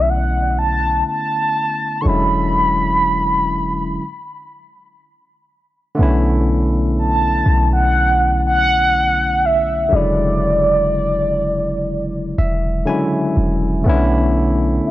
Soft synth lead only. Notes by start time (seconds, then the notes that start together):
0.00 E5
0.09 F#5
0.59 A5
1.08 A5
2.01 C#6
2.07 B5
6.99 A5
7.73 F#5
8.47 F#5
9.45 E5
9.94 D5
14.86 E5